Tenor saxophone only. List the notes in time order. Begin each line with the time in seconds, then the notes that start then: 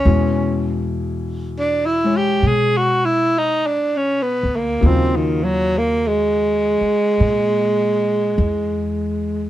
Already playing: C#4
1.59 D4
1.86 E4
2.17 G4
2.47 G#4
2.77 F#4
3.05 E4
3.38 D#4
3.67 D4
3.97 C#4
4.22 B3
4.56 A#3
4.87 C4
5.16 D#3
5.44 F#3
5.78 A#3
6.07 G#3